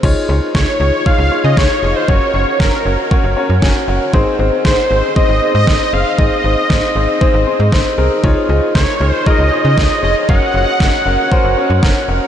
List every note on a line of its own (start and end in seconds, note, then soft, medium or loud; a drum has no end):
0.03 0.15 C#2 loud
0.03 0.25 D#4 loud
0.03 0.25 F4 medium
0.03 0.25 G#4 medium
0.03 0.25 C#5 loud
0.03 kick loud
0.03 crash medium
0.29 0.40 C#2 loud
0.29 0.51 D#4 medium
0.29 0.51 F4 medium
0.29 0.51 G#4 medium
0.29 0.51 C#5 medium
0.55 0.66 C#2 loud
0.55 0.77 D#4 medium
0.55 0.77 F4 medium
0.55 0.77 G#4 medium
0.55 0.77 C#5 medium
0.55 1.08 C#5 loud
0.55 kick loud
0.55 snare loud
0.80 0.92 C#2 loud
0.80 1.02 D#4 medium
0.80 1.02 F4 medium
0.80 1.02 G#4 medium
0.80 1.02 C#5 medium
1.06 1.28 D#4 medium
1.06 1.28 F4 medium
1.06 1.28 G#4 medium
1.06 1.28 C#5 loud
1.06 1.44 F5 loud
1.06 kick loud
1.19 1.30 C#2 medium
1.32 1.54 D#4 medium
1.32 1.54 F4 medium
1.32 1.54 G#4 medium
1.32 1.54 C#5 medium
1.44 1.56 C#3 loud
1.44 1.59 D#5 medium
1.57 1.69 C#2 medium
1.57 1.79 D#4 medium
1.57 1.79 F4 medium
1.57 1.79 G#4 medium
1.57 1.97 C#5 medium
1.57 1.79 C#5 medium
1.57 kick loud
1.57 snare loud
1.83 1.94 F1 medium
1.83 2.05 D#4 medium
1.83 2.05 F4 medium
1.83 2.05 G#4 medium
1.83 2.05 D#5 medium
1.96 2.10 C5 medium
2.08 2.20 F#1 loud
2.08 2.31 C#4 medium
2.08 2.31 F#4 medium
2.08 2.31 A#4 medium
2.08 2.61 C#5 loud
2.08 2.31 C#5 loud
2.08 kick loud
2.34 2.45 F#1 medium
2.34 2.56 C#4 medium
2.34 2.56 F#4 medium
2.34 2.56 A#4 medium
2.34 2.56 C#5 medium
2.60 2.71 F#1 loud
2.60 2.82 C#4 medium
2.60 2.82 F#4 medium
2.60 3.11 A#4 medium
2.60 2.82 A#4 medium
2.60 2.82 C#5 medium
2.60 kick loud
2.60 snare loud
2.85 2.97 F#1 loud
2.85 3.08 C#4 medium
2.85 3.08 F#4 medium
2.85 3.08 A#4 medium
2.85 3.08 C#5 medium
3.11 3.33 C#4 medium
3.11 3.33 F#4 medium
3.11 3.33 A#4 medium
3.11 3.33 C#5 loud
3.11 kick loud
3.24 3.35 F#1 medium
3.37 3.59 C#4 medium
3.37 3.59 F#4 medium
3.37 3.59 A#4 medium
3.37 3.59 C#5 medium
3.50 3.61 F#2 medium
3.62 3.74 F#1 loud
3.62 3.84 C#4 medium
3.62 3.84 F#4 medium
3.62 3.84 A#4 medium
3.62 3.84 C#5 loud
3.62 3.94 G#5 medium
3.62 kick loud
3.62 snare loud
3.88 3.99 F#1 medium
3.88 4.10 C#4 medium
3.88 4.10 F#4 medium
3.88 4.10 A#4 medium
3.88 4.10 C#5 medium
3.97 4.12 F#5 medium
4.13 4.25 G#1 loud
4.13 4.36 C4 loud
4.13 4.36 D#4 loud
4.13 4.36 G#4 loud
4.13 4.36 C5 loud
4.13 kick loud
4.39 4.51 G#1 loud
4.39 4.61 C4 medium
4.39 4.61 D#4 medium
4.39 4.61 G#4 medium
4.39 4.61 C5 loud
4.65 4.76 G#1 medium
4.65 4.87 C4 medium
4.65 4.87 D#4 medium
4.65 4.87 G#4 medium
4.65 4.87 C5 medium
4.65 5.13 C5 medium
4.65 kick loud
4.65 snare loud
4.90 5.02 G#1 medium
4.90 5.13 C4 medium
4.90 5.13 D#4 medium
4.90 5.13 G#4 medium
4.90 5.13 C5 medium
5.16 5.38 C4 medium
5.16 5.38 D#4 medium
5.16 5.38 G#4 medium
5.16 5.38 C5 loud
5.16 5.52 D#5 loud
5.16 kick loud
5.29 5.40 G#1 medium
5.42 5.64 C4 medium
5.42 5.64 D#4 medium
5.42 5.64 G#4 medium
5.42 5.64 C5 medium
5.55 5.66 G#2 loud
5.55 5.95 D#5 loud
5.67 5.79 G#1 loud
5.67 5.90 C4 medium
5.67 5.90 D#4 medium
5.67 5.90 G#4 medium
5.67 5.90 C5 medium
5.67 kick loud
5.67 snare loud
5.93 6.04 F#1 medium
5.93 6.15 C4 medium
5.93 6.15 D#4 medium
5.93 6.15 G#4 medium
5.93 6.15 C5 medium
5.93 6.18 F5 loud
6.18 6.30 G#1 loud
6.18 6.41 C4 medium
6.18 6.41 D#4 medium
6.18 6.41 G#4 medium
6.18 6.41 D#5 loud
6.18 7.68 D#5 loud
6.18 kick loud
6.44 6.56 G#1 loud
6.44 6.66 C4 medium
6.44 6.66 D#4 medium
6.44 6.66 G#4 medium
6.44 6.66 C5 medium
6.70 6.81 G#1 loud
6.70 6.92 C4 medium
6.70 6.92 D#4 medium
6.70 6.92 G#4 medium
6.70 6.92 C5 medium
6.70 kick loud
6.70 snare loud
6.95 7.07 G#1 loud
6.95 7.18 C4 medium
6.95 7.18 D#4 medium
6.95 7.18 G#4 medium
6.95 7.18 C5 medium
7.21 7.43 C4 loud
7.21 7.43 D#4 loud
7.21 7.43 G#4 loud
7.21 7.43 C5 loud
7.21 kick loud
7.34 7.45 G#1 loud
7.47 7.69 C4 medium
7.47 7.69 D#4 medium
7.47 7.69 G#4 medium
7.47 7.69 C5 medium
7.60 7.71 G#2 loud
7.72 7.84 G#1 medium
7.72 7.95 C4 medium
7.72 7.95 D#4 medium
7.72 7.95 G#4 medium
7.72 7.95 C5 medium
7.72 kick loud
7.72 snare loud
7.98 8.09 C2 medium
7.98 8.20 C4 medium
7.98 8.20 D#4 medium
7.98 8.20 G#4 medium
7.98 8.20 A#4 medium
8.24 8.35 C#2 loud
8.24 8.46 D#4 loud
8.24 8.46 F4 loud
8.24 8.46 G#4 medium
8.24 8.46 C#5 loud
8.24 kick loud
8.49 8.61 C#2 loud
8.49 8.72 D#4 medium
8.49 8.72 F4 medium
8.49 8.72 G#4 medium
8.49 8.72 D#5 medium
8.75 8.86 C#2 loud
8.75 8.97 D#4 medium
8.75 8.97 G#4 medium
8.75 8.97 A#4 medium
8.75 9.10 C#5 medium
8.75 kick loud
8.75 snare loud
9.00 9.12 C#2 loud
9.00 9.23 D#4 medium
9.00 9.23 F4 medium
9.00 9.23 G#4 medium
9.00 9.23 C#5 medium
9.10 9.28 C5 medium
9.26 9.49 D#4 loud
9.26 9.49 F4 medium
9.26 9.49 G#4 medium
9.26 9.49 A#4 loud
9.26 9.64 D#5 medium
9.26 kick loud
9.39 9.50 C#2 medium
9.52 9.74 D#4 medium
9.52 9.74 F4 medium
9.52 9.74 G#4 medium
9.52 9.74 C#5 medium
9.65 9.76 C#3 medium
9.65 10.01 D#5 loud
9.78 9.89 C#2 medium
9.78 10.00 D#4 medium
9.78 10.00 F4 medium
9.78 10.00 G#4 medium
9.78 10.00 C#5 medium
9.78 kick loud
9.78 snare loud
10.03 10.15 F1 loud
10.03 10.25 D#4 medium
10.03 10.25 F4 medium
10.03 10.25 G#4 medium
10.03 10.25 C#5 medium
10.03 10.15 D#5 medium
10.29 10.40 F#1 loud
10.29 10.51 C#4 medium
10.29 10.51 F#4 medium
10.29 10.51 A#4 medium
10.29 10.51 C#5 loud
10.29 11.79 F#5 loud
10.29 kick loud
10.54 10.66 F#1 medium
10.54 10.77 C#4 medium
10.54 10.77 F#4 medium
10.54 10.77 A#4 medium
10.54 10.77 C#5 medium
10.80 10.92 F#1 loud
10.80 11.02 C#4 medium
10.80 11.02 F#4 medium
10.80 11.02 A#4 medium
10.80 11.02 C#5 medium
10.80 kick loud
10.80 snare loud
11.06 11.17 F#1 medium
11.06 11.28 C#4 medium
11.06 11.28 F#4 medium
11.06 11.28 A#4 medium
11.06 11.28 C#5 medium
11.31 11.54 C#4 loud
11.31 11.54 F#4 loud
11.31 11.54 A#4 loud
11.31 11.54 C5 loud
11.31 kick loud
11.44 11.56 F#1 loud
11.57 11.79 C#4 medium
11.57 11.79 F#4 medium
11.57 11.79 A#4 medium
11.57 11.79 C#5 medium
11.70 11.81 F#2 loud
11.83 11.94 F#1 loud
11.83 12.05 C#4 medium
11.83 12.05 F#4 medium
11.83 12.05 A#4 medium
11.83 12.05 C#5 loud
11.83 12.27 A#5 medium
11.83 kick loud
11.83 snare loud
12.08 12.20 F1 medium
12.08 12.27 C#4 medium
12.08 12.27 F#4 medium
12.08 12.27 A#4 medium
12.08 12.27 C#5 medium